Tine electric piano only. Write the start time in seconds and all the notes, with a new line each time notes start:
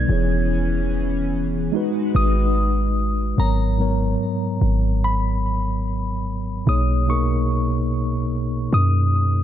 Already playing: B2 G3 D#4 A4 D5
0.07 E3 E4 G#4
0.12 C#5
1.72 G#3 D#4 F#4
1.76 B4
3.36 G#2 F#3 B3 A#4
3.41 C#5
3.78 G#2 F#3 B3 A#4
3.82 C#5
6.65 B2 A#3 D#4 G#4
6.70 C#5
7.06 B2 A#3 D#4 G#4
7.11 A#4